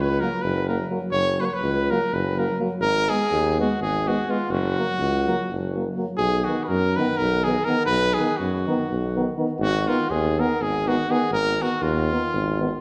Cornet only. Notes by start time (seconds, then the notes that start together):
0.01 B4
0.20 A#4
0.42 B4
0.69 A#4
1.12 C#5
1.40 B4
1.45 C#5
1.54 B4
1.90 A#4
2.14 B4
2.39 A#4
2.81 A#4
3.09 G#4
3.60 F#4
3.82 G#4
4.08 F#4
4.31 F4
4.51 F#4
6.17 G#4
6.44 F#4
6.64 A#4 B4
6.96 B4
7.17 A#4
7.44 G#4
7.65 A#4
7.86 B4
8.14 G#4
8.37 F#4
9.61 F#4
9.88 F4
10.10 G#4
10.40 A#4
10.62 G#4
10.88 F#4
11.11 G#4
11.33 A#4
11.62 F#4
11.82 F4